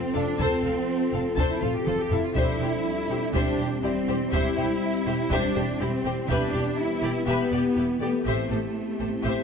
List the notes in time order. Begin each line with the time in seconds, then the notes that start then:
Already playing: F3 C4 F4 A4 G5
0.14 F1 D4 A4 F5
0.39 F1 C4 A4 C5 A5, taiko
0.64 F1 A4 F5
1.13 F1 A4 F5
1.37 F1 D4 A4 C5 A5, taiko
1.51 E4
1.62 F1 F4 A4 F5, taiko low-mid
1.75 G4
1.86 F1 F4 A4 C5, taiko mid
1.99 G4
2.11 F1 E4 A4 F5, taiko low
2.24 F4
2.35 E1 G3 C4 D4 E4 G4 C5 D5 E5, taiko
2.60 E1 G4 C5
3.10 E1 G4 C5
3.34 E1 D4 G4 C5 E5, taiko
3.59 E1 G4 C5
3.83 E1 C4 E4 G4 D5
4.08 E1 G4 C5
4.32 E1 E4 G4 C5 E5, taiko
4.57 E1 G4 C5 E5
5.06 E1 G4 C5
5.31 E1 D4 G4 C5 E5, taiko
5.55 E1 G4 C5
5.80 E1 C4 E4 G4
6.04 E1 G4 C5
6.29 E1 E3 B3 D4 G4 B4 E5, taiko
6.54 E1 G4 D5
6.78 E4
7.03 E1 G4 D5
7.27 E1 B3 G4 B4 E5
7.51 E1 G4 D5
7.76 E1 E4 G4 B4
8.00 E1 A3 B3 G4 A4 D5
8.25 A1 A3 C4 E4 G4 C5 E5
8.50 A1 G4 A4 C5
8.99 A1 G4 A4 C5
9.24 A1 G4 C5 E5